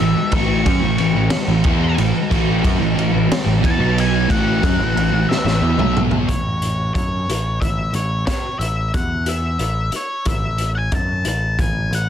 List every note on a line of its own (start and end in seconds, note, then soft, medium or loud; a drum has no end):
0.00 0.15 A1 medium
0.00 0.15 A2 medium
0.00 0.16 E3 medium
0.00 0.38 E5 loud
0.16 muted distorted electric guitar stroke medium
0.16 muted picked electric bass stroke soft
0.32 0.63 A1 loud
0.32 0.65 A2 loud
0.32 0.65 E3 loud
0.32 0.65 A3 loud
0.32 1.95 C#6 loud
0.32 kick loud
0.32 ride loud
0.66 0.81 F#2 loud
0.66 0.81 F#3 loud
0.66 0.82 C#4 loud
0.66 kick loud
0.66 ride medium
0.82 0.98 A1 medium
0.82 0.99 A2 medium
0.82 0.99 E3 medium
0.98 1.14 A1 medium
0.98 1.16 A2 medium
0.98 1.16 E3 medium
0.98 ride medium
1.15 1.31 A1 medium
1.15 1.33 A2 medium
1.15 1.33 E3 medium
1.30 muted distorted electric guitar stroke medium
1.30 snare loud
1.30 ride loud
1.48 1.64 A1 medium
1.48 1.65 A2 medium
1.48 1.65 E3 medium
1.64 1.96 E2 loud
1.64 1.97 E3 loud
1.64 1.98 B3 loud
1.64 1.98 E4 loud
1.64 kick loud
1.64 ride medium
1.98 2.13 A1 medium
1.98 2.13 A2 medium
1.98 2.15 E3 medium
1.98 ride medium
2.14 muted picked electric bass stroke soft
2.14 muted distorted electric guitar stroke medium
2.31 2.62 A1 loud
2.31 2.63 A2 loud
2.31 2.63 E3 loud
2.31 2.64 A3 loud
2.31 kick medium
2.31 ride medium
2.63 2.79 F#2 loud
2.63 2.79 F#3 loud
2.63 2.80 C#4 loud
2.63 kick loud
2.63 ride medium
2.79 2.95 A1 medium
2.79 2.95 A2 medium
2.79 2.96 E3 medium
2.96 3.12 A1 medium
2.96 3.11 A2 medium
2.96 3.11 E3 medium
2.96 ride medium
3.12 3.30 A1 medium
3.12 3.27 A2 medium
3.12 3.30 E3 medium
3.28 muted distorted electric guitar stroke medium
3.28 snare loud
3.28 ride loud
3.44 3.62 A1 medium
3.44 3.60 A2 medium
3.44 3.59 E3 medium
3.60 3.76 E3 medium
3.60 3.77 B3 loud
3.60 kick loud
3.64 3.79 E2 loud
3.64 3.99 A5 loud
3.64 ride medium
3.77 4.26 B1 loud
3.77 4.27 B2 medium
3.77 4.27 F#3 medium
3.77 4.28 B3 medium
3.98 4.30 G#5 loud
3.98 ride medium
4.28 4.61 A1 medium
4.28 4.61 A2 loud
4.28 4.61 E3 loud
4.28 4.62 A3 loud
4.28 5.33 F#5 loud
4.28 kick loud
4.28 ride loud
4.62 4.79 F#2 loud
4.62 4.77 F#3 loud
4.62 4.77 C#4 medium
4.62 kick loud
4.62 ride medium
4.78 4.95 A1 medium
4.78 4.94 A2 medium
4.78 4.95 E3 medium
4.95 5.11 A1 medium
4.95 5.11 A2 medium
4.95 5.11 E3 medium
4.95 ride medium
5.12 5.28 A1 medium
5.12 5.25 A2 medium
5.12 5.29 E3 medium
5.26 5.99 E5 medium
5.26 muted distorted electric guitar stroke medium
5.26 muted picked electric bass stroke soft
5.31 snare medium
5.44 5.61 A1 loud
5.44 5.61 A2 medium
5.44 5.60 E3 medium
5.44 snare medium
5.61 5.77 E2 loud
5.61 5.76 E3 loud
5.61 5.77 B3 loud
5.77 6.24 B1 loud
5.77 6.27 B2 medium
5.77 6.27 F#3 medium
5.77 6.27 B3 medium
5.77 mid tom medium
5.97 mid tom loud
6.11 floor tom medium
6.28 6.91 A1 medium
6.28 6.93 C#5 medium
6.28 kick medium
6.28 closed hi-hat medium
6.62 closed hi-hat medium
6.95 7.26 F#2 medium
6.95 7.61 C#5 medium
6.95 kick loud
6.95 closed hi-hat medium
7.28 7.59 A1 medium
7.28 closed hi-hat loud
7.61 7.92 A1 medium
7.61 7.95 E5 medium
7.61 kick medium
7.61 closed hi-hat medium
7.93 8.25 A1 medium
7.93 8.26 C#5 medium
7.93 closed hi-hat medium
8.27 8.59 C#5 medium
8.27 kick loud
8.27 snare loud
8.27 closed hi-hat medium
8.59 8.91 A1 medium
8.59 8.91 E5 medium
8.59 closed hi-hat medium
8.94 9.56 E2 medium
8.94 9.28 F#5 medium
8.94 kick loud
8.94 closed hi-hat medium
9.26 9.90 E5 medium
9.26 closed hi-hat loud
9.59 9.90 A1 medium
9.59 closed hi-hat medium
9.92 muted picked electric bass stroke soft
9.92 closed hi-hat medium
9.96 10.28 C#5 medium
10.25 10.89 A1 medium
10.25 10.70 E5 medium
10.25 kick loud
10.25 closed hi-hat medium
10.58 closed hi-hat medium
10.75 10.78 F#5 medium
10.75 10.94 G#5 medium
10.92 11.23 F#2 medium
10.92 11.27 A5 medium
10.92 kick loud
10.92 closed hi-hat medium
11.24 11.56 A1 medium
11.24 closed hi-hat medium
11.29 11.60 A5 loud
11.59 11.90 A1 medium
11.59 11.94 G#5 loud
11.59 kick medium
11.59 closed hi-hat medium
11.91 12.09 A1 medium
11.91 12.09 F#5 medium
11.91 closed hi-hat medium